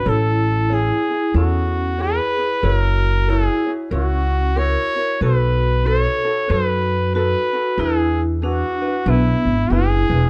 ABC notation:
X:1
M:4/4
L:1/8
Q:"Swing" 1/4=93
K:A
V:1 name="Trumpet"
A2 G2 F2 B2 | ^A2 G z F2 c2 | B2 c2 B2 B2 | G z F2 E2 G2 |]
V:2 name="Ukulele"
[EAc]2 [EGc] [EG] [EGAc]2 [EGc] [EG] | [EF^Ac]2 [EFAc] [EFc] [EFAc]2 [EFAc] [EFc] | [^DFAB]2 [DFAB] [DFA] [DFAB]2 [DFAB] [DFA] | [DEGB]2 [DEGB] [DEB] [DEGB]2 [DEGB] [DEB] |]
V:3 name="Vibraphone"
E2 E2 C2 G2 | F2 E z C2 ^A2 | F2 A2 F2 F2 | E z D2 B,2 E2 |]
V:4 name="Upright bass" clef=bass
A,,,4 E,,4 | F,,,4 C,,4 | B,,,4 F,,4 | E,,4 B,,, G,,, F,,, E,,, |]